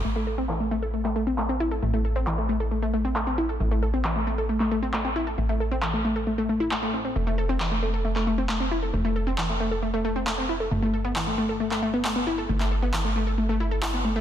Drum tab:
CP |----x----x--x---|----x-------x---|----x----x--x---|----x-------x---|

CP |----x----x--x---|----x-------x---|----x----x--x---|-x--x-------x---|